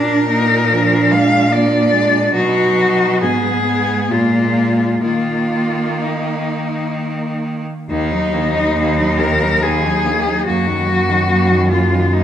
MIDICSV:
0, 0, Header, 1, 5, 480
1, 0, Start_track
1, 0, Key_signature, -6, "minor"
1, 0, Tempo, 823045
1, 1368, Time_signature, 3, 2, 24, 8
1, 1368, Tempo, 879765
1, 2328, Tempo, 947867
1, 4248, Tempo, 857143
1, 5688, Tempo, 834492
1, 6705, End_track
2, 0, Start_track
2, 0, Title_t, "Cello"
2, 0, Program_c, 0, 42
2, 0, Note_on_c, 0, 70, 101
2, 650, Note_on_c, 0, 77, 108
2, 658, Note_off_c, 0, 70, 0
2, 889, Note_on_c, 0, 74, 104
2, 898, Note_off_c, 0, 77, 0
2, 1366, Note_off_c, 0, 74, 0
2, 1370, Note_on_c, 0, 66, 108
2, 1841, Note_off_c, 0, 66, 0
2, 1851, Note_on_c, 0, 68, 100
2, 2329, Note_on_c, 0, 65, 82
2, 2336, Note_off_c, 0, 68, 0
2, 2795, Note_off_c, 0, 65, 0
2, 2798, Note_on_c, 0, 65, 85
2, 3295, Note_on_c, 0, 63, 72
2, 3303, Note_off_c, 0, 65, 0
2, 4017, Note_off_c, 0, 63, 0
2, 4254, Note_on_c, 0, 63, 103
2, 4975, Note_on_c, 0, 70, 100
2, 4984, Note_off_c, 0, 63, 0
2, 5218, Note_on_c, 0, 68, 99
2, 5227, Note_off_c, 0, 70, 0
2, 5685, Note_off_c, 0, 68, 0
2, 5689, Note_on_c, 0, 66, 102
2, 6392, Note_off_c, 0, 66, 0
2, 6405, Note_on_c, 0, 65, 90
2, 6644, Note_on_c, 0, 63, 92
2, 6653, Note_off_c, 0, 65, 0
2, 6705, Note_off_c, 0, 63, 0
2, 6705, End_track
3, 0, Start_track
3, 0, Title_t, "Cello"
3, 0, Program_c, 1, 42
3, 0, Note_on_c, 1, 62, 75
3, 166, Note_off_c, 1, 62, 0
3, 170, Note_on_c, 1, 63, 72
3, 416, Note_on_c, 1, 62, 72
3, 425, Note_off_c, 1, 63, 0
3, 880, Note_off_c, 1, 62, 0
3, 884, Note_on_c, 1, 62, 70
3, 1358, Note_off_c, 1, 62, 0
3, 1365, Note_on_c, 1, 63, 74
3, 1850, Note_on_c, 1, 59, 72
3, 1858, Note_off_c, 1, 63, 0
3, 2084, Note_off_c, 1, 59, 0
3, 2087, Note_on_c, 1, 56, 67
3, 2786, Note_off_c, 1, 56, 0
3, 2802, Note_on_c, 1, 58, 69
3, 4120, Note_off_c, 1, 58, 0
3, 4250, Note_on_c, 1, 58, 64
3, 4372, Note_on_c, 1, 63, 65
3, 4380, Note_off_c, 1, 58, 0
3, 4492, Note_on_c, 1, 58, 66
3, 4501, Note_off_c, 1, 63, 0
3, 4614, Note_on_c, 1, 63, 59
3, 4622, Note_off_c, 1, 58, 0
3, 4733, Note_off_c, 1, 63, 0
3, 4736, Note_on_c, 1, 58, 70
3, 4861, Note_on_c, 1, 63, 66
3, 4869, Note_off_c, 1, 58, 0
3, 4981, Note_on_c, 1, 58, 61
3, 4990, Note_off_c, 1, 63, 0
3, 5096, Note_on_c, 1, 63, 56
3, 5104, Note_off_c, 1, 58, 0
3, 5214, Note_off_c, 1, 63, 0
3, 5218, Note_on_c, 1, 58, 66
3, 5338, Note_on_c, 1, 63, 61
3, 5347, Note_off_c, 1, 58, 0
3, 5453, Note_on_c, 1, 58, 63
3, 5461, Note_off_c, 1, 63, 0
3, 5573, Note_on_c, 1, 63, 64
3, 5581, Note_off_c, 1, 58, 0
3, 5688, Note_off_c, 1, 63, 0
3, 5691, Note_on_c, 1, 58, 68
3, 5808, Note_on_c, 1, 54, 60
3, 5817, Note_off_c, 1, 58, 0
3, 5929, Note_on_c, 1, 58, 59
3, 5938, Note_off_c, 1, 54, 0
3, 6056, Note_on_c, 1, 54, 60
3, 6065, Note_off_c, 1, 58, 0
3, 6166, Note_off_c, 1, 54, 0
3, 6170, Note_on_c, 1, 58, 69
3, 6286, Note_on_c, 1, 54, 62
3, 6295, Note_off_c, 1, 58, 0
3, 6411, Note_on_c, 1, 58, 63
3, 6419, Note_off_c, 1, 54, 0
3, 6524, Note_on_c, 1, 54, 55
3, 6533, Note_off_c, 1, 58, 0
3, 6641, Note_off_c, 1, 54, 0
3, 6645, Note_on_c, 1, 58, 64
3, 6705, Note_off_c, 1, 58, 0
3, 6705, End_track
4, 0, Start_track
4, 0, Title_t, "Cello"
4, 0, Program_c, 2, 42
4, 0, Note_on_c, 2, 62, 80
4, 164, Note_off_c, 2, 62, 0
4, 168, Note_on_c, 2, 58, 72
4, 411, Note_on_c, 2, 53, 76
4, 419, Note_off_c, 2, 58, 0
4, 649, Note_on_c, 2, 56, 80
4, 658, Note_off_c, 2, 53, 0
4, 884, Note_on_c, 2, 58, 72
4, 892, Note_off_c, 2, 56, 0
4, 1121, Note_on_c, 2, 56, 72
4, 1129, Note_off_c, 2, 58, 0
4, 1361, Note_off_c, 2, 56, 0
4, 1365, Note_on_c, 2, 54, 75
4, 1847, Note_on_c, 2, 59, 78
4, 1855, Note_off_c, 2, 54, 0
4, 2081, Note_off_c, 2, 59, 0
4, 2084, Note_on_c, 2, 59, 78
4, 2321, Note_off_c, 2, 59, 0
4, 2324, Note_on_c, 2, 58, 83
4, 2790, Note_off_c, 2, 58, 0
4, 2798, Note_on_c, 2, 58, 69
4, 3994, Note_off_c, 2, 58, 0
4, 4249, Note_on_c, 2, 51, 66
4, 4371, Note_on_c, 2, 54, 67
4, 4379, Note_off_c, 2, 51, 0
4, 4493, Note_on_c, 2, 51, 64
4, 4501, Note_off_c, 2, 54, 0
4, 4614, Note_on_c, 2, 54, 63
4, 4623, Note_off_c, 2, 51, 0
4, 4732, Note_off_c, 2, 54, 0
4, 4735, Note_on_c, 2, 51, 62
4, 4855, Note_on_c, 2, 54, 63
4, 4863, Note_off_c, 2, 51, 0
4, 4973, Note_on_c, 2, 51, 65
4, 4982, Note_off_c, 2, 54, 0
4, 5094, Note_on_c, 2, 54, 60
4, 5102, Note_off_c, 2, 51, 0
4, 5213, Note_off_c, 2, 54, 0
4, 5216, Note_on_c, 2, 51, 65
4, 5333, Note_on_c, 2, 54, 60
4, 5341, Note_off_c, 2, 51, 0
4, 5455, Note_on_c, 2, 51, 58
4, 5463, Note_off_c, 2, 54, 0
4, 5572, Note_on_c, 2, 54, 65
4, 5581, Note_off_c, 2, 51, 0
4, 5687, Note_off_c, 2, 54, 0
4, 5690, Note_on_c, 2, 54, 65
4, 5805, Note_on_c, 2, 51, 60
4, 5814, Note_off_c, 2, 54, 0
4, 5923, Note_on_c, 2, 54, 63
4, 5932, Note_off_c, 2, 51, 0
4, 6045, Note_on_c, 2, 51, 60
4, 6054, Note_off_c, 2, 54, 0
4, 6163, Note_off_c, 2, 51, 0
4, 6166, Note_on_c, 2, 54, 66
4, 6287, Note_on_c, 2, 51, 57
4, 6296, Note_off_c, 2, 54, 0
4, 6406, Note_on_c, 2, 54, 58
4, 6415, Note_off_c, 2, 51, 0
4, 6530, Note_on_c, 2, 51, 61
4, 6538, Note_off_c, 2, 54, 0
4, 6647, Note_off_c, 2, 51, 0
4, 6650, Note_on_c, 2, 54, 59
4, 6705, Note_off_c, 2, 54, 0
4, 6705, End_track
5, 0, Start_track
5, 0, Title_t, "Cello"
5, 0, Program_c, 3, 42
5, 0, Note_on_c, 3, 46, 74
5, 1359, Note_off_c, 3, 46, 0
5, 1362, Note_on_c, 3, 47, 74
5, 1848, Note_on_c, 3, 44, 82
5, 1856, Note_off_c, 3, 47, 0
5, 2325, Note_on_c, 3, 46, 72
5, 2332, Note_off_c, 3, 44, 0
5, 2794, Note_off_c, 3, 46, 0
5, 2797, Note_on_c, 3, 51, 68
5, 4118, Note_off_c, 3, 51, 0
5, 4247, Note_on_c, 3, 39, 85
5, 5687, Note_on_c, 3, 42, 79
5, 5696, Note_off_c, 3, 39, 0
5, 6705, Note_off_c, 3, 42, 0
5, 6705, End_track
0, 0, End_of_file